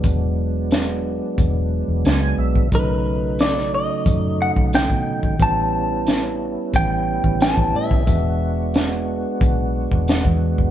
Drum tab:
HH |x---x---x---x---|x---x---x---x---|x---x---x---x---|x---x---x---x---|
SD |----o-------o---|----oo------o---|----o-------o---|----o-------o---|
BD |o-------o------o|o-------o--o-o-o|o-------o--o-o-o|o-------o--o-o-o|